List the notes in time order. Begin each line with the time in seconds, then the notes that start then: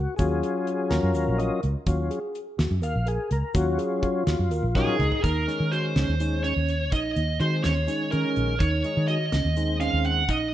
Already playing: F#4
0.16 D#2 F#3 C#4 F4 F#4 G#4, kick, closed hi-hat, shaker
0.43 G#4, closed hi-hat
0.67 closed hi-hat
0.90 D#2 F#4 A#4, snare, closed hi-hat, shaker
1.03 F#2
1.14 D#2 A#4, closed hi-hat, shaker
1.28 A#1
1.38 F#3 C#4 F4 A#4 D#5, closed hi-hat
1.63 C#2, closed hi-hat
1.86 D#2 F#3 C#4 F4 F#4, kick, closed hi-hat, shaker
2.11 G#4, closed hi-hat
2.35 closed hi-hat, shaker
2.59 D#2 F#4, snare, closed hi-hat, shaker
2.71 F#2
2.82 D#2 A#4 F5, closed hi-hat, shaker
2.96 A#1
3.06 G#4 A#4, closed hi-hat
3.31 C#2 A#4, closed hi-hat
3.54 D#2 F#3 C#4 F4 F#4, kick, closed hi-hat, shaker
3.78 G#4, closed hi-hat, shaker
4.02 F4, kick, closed hi-hat
4.27 D#2 F#4, snare, closed hi-hat
4.39 F#2
4.51 D#2 A#4, closed hi-hat, shaker
4.63 A#1
4.75 F#3 C#4 D#4 F4 G#4 A#4, kick, snare
4.87 high tom
4.99 C#2, mid tom, shaker
5.12 floor tom
5.23 D#2 D#4 A#4, kick, closed hi-hat, shaker
5.48 D#3 G#3 C#4, snare, closed hi-hat
5.60 D#3
5.71 F#4 C5, closed hi-hat
5.96 C#2 C#4, snare, closed hi-hat
6.08 D#2
6.20 D#3 G#3 C#4 D#4, closed hi-hat, shaker
6.44 C#4 C#5, closed hi-hat, shaker
6.56 D#2
6.68 closed hi-hat
6.92 A#1 D#4 D#5, kick, closed hi-hat, shaker
7.16 D#2, closed hi-hat
7.39 D#3 G#3 C4 F#4 C5, closed hi-hat
7.64 D#2 C#4 C#5, snare, closed hi-hat
7.87 D#3 G#3 C#4 D#4, closed hi-hat, shaker
8.11 D#3 C#4 A#4, closed hi-hat, shaker
8.36 A#1, closed hi-hat
8.59 D#2 D#4 C#5, kick, closed hi-hat, shaker
8.84 D#3 G#3 D#4, closed hi-hat
8.97 D#3
9.08 F#4 D#5, closed hi-hat
9.32 C#2 C#4, snare, closed hi-hat
9.45 D#2
9.56 D#3 G#3 C4 D#4, closed hi-hat, shaker
9.80 C#4 F5, snare, closed hi-hat, shaker
9.93 D#2
10.05 F#5, closed hi-hat
10.29 A#1 D#4 D#5, kick, closed hi-hat, shaker